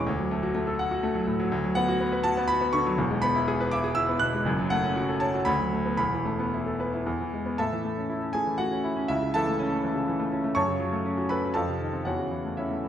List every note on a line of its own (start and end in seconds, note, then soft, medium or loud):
0.00 1.27 D6 loud
0.07 1.48 D2 medium
0.19 0.38 F#3 medium
0.31 0.50 A3 medium
0.43 0.62 F#4 medium
0.55 0.74 A3 medium
0.67 0.86 A4 medium
0.79 0.98 F#5 medium
0.91 1.10 F#4 medium
1.03 1.23 A3 medium
1.15 1.34 F#3 medium
1.27 1.47 A2 medium
1.40 1.52 F#3 medium
1.52 2.95 D2 medium
1.64 1.83 F#3 medium
1.75 1.95 B3 medium
1.75 2.24 F#5 loud
1.88 2.08 F#4 medium
2.01 2.20 B3 medium
2.12 2.32 B4 medium
2.24 2.45 F#4 medium
2.24 2.49 A5 loud
2.37 2.57 B3 medium
2.48 2.69 F#4 medium
2.48 2.73 B5 loud
2.61 2.81 B3 medium
2.73 2.94 D3 medium
2.73 2.98 C#6 loud
2.86 2.99 F#3 medium
2.97 4.42 E1 medium
2.97 4.42 E2 medium
3.11 3.31 G#3 medium
3.22 3.43 B3 medium
3.22 3.72 B5 loud
3.35 3.55 E4 medium
3.48 3.68 G#4 medium
3.60 3.80 B4 medium
3.71 3.93 E5 medium
3.71 3.97 D6 loud
3.84 4.04 G#4 medium
3.95 4.17 E4 medium
3.95 4.21 E6 loud
4.09 4.29 B3 medium
4.19 4.41 B2 medium
4.19 4.46 F#6 loud
4.34 4.47 G#3 medium
4.45 5.43 F#1 medium
4.45 5.43 F#2 medium
4.59 4.79 F#3 medium
4.70 4.91 A3 medium
4.70 5.21 F#5 loud
4.84 5.04 C#4 medium
4.96 5.16 F#4 medium
5.09 5.29 A4 medium
5.20 5.42 C#5 medium
5.20 5.46 A5 loud
5.34 5.47 F#4 medium
5.45 5.97 D2 medium
5.45 5.96 B5 loud
5.60 5.81 F#3 medium
5.73 5.94 A3 medium
5.86 5.99 B3 medium
5.97 7.02 E1 medium
5.97 7.03 E2 medium
5.97 7.05 B5 loud
6.12 6.34 E3 medium
6.26 6.47 A3 medium
6.39 6.61 B3 medium
6.54 6.75 E4 medium
6.66 6.88 A4 medium
6.80 7.01 B4 medium
6.94 7.07 E4 medium
7.06 7.58 E2 medium
7.21 7.42 E3 medium
7.34 7.55 G#3 medium
7.46 7.59 B3 medium
7.58 9.06 A2 medium
7.58 8.31 A4 medium
7.58 8.31 E5 medium
7.58 8.34 A5 medium
7.72 7.92 E3 medium
7.85 8.05 A3 medium
7.97 8.17 C#4 medium
8.10 8.30 E4 medium
8.22 8.42 C#4 medium
8.33 8.54 A3 medium
8.33 8.58 G#4 medium
8.33 8.59 G#5 loud
8.47 8.67 E3 soft
8.58 8.79 A3 medium
8.58 9.06 F#4 medium
8.58 9.09 F#5 loud
8.72 8.92 C#4 medium
8.84 9.05 E4 medium
8.96 9.10 C#4 medium
9.08 10.53 C#2 medium
9.08 9.33 E4 medium
9.08 9.34 E5 loud
9.22 9.43 C#3 medium
9.34 9.55 E3 medium
9.34 10.29 A4 medium
9.34 10.29 E5 medium
9.34 10.32 A5 loud
9.48 9.67 A3 medium
9.59 9.79 C#4 medium
9.71 9.91 A3 medium
9.84 10.03 E3 medium
9.95 10.15 C#3 medium
10.07 10.27 E3 medium
10.20 10.40 A3 medium
10.32 10.52 C#4 medium
10.44 10.57 A3 medium
10.55 11.52 F#2 medium
10.55 11.26 C#5 medium
10.55 11.26 A5 medium
10.55 11.29 C#6 loud
10.68 10.88 C#3 medium
10.80 11.00 F#3 medium
10.93 11.13 A3 medium
11.05 11.25 C#4 medium
11.18 11.38 F#4 medium
11.29 11.51 A4 medium
11.29 11.54 B4 medium
11.29 11.55 B5 medium
11.42 11.55 F#4 medium
11.54 12.05 F2 medium
11.54 12.03 A4 medium
11.54 12.03 F5 medium
11.54 12.06 A5 medium
11.68 11.89 C3 soft
11.81 12.02 D#3 soft
11.93 12.06 C4 medium
12.05 12.88 E2 medium
12.05 12.55 F#4 medium
12.05 12.55 C#5 medium
12.05 12.58 F#5 medium
12.18 12.40 C#3 medium
12.31 12.53 E3 medium
12.45 12.66 A3 soft
12.57 12.79 C#4 medium
12.57 12.88 E4 soft
12.57 12.88 C#5 soft
12.57 12.88 E5 medium
12.71 12.88 A3 soft
12.84 12.88 E3 soft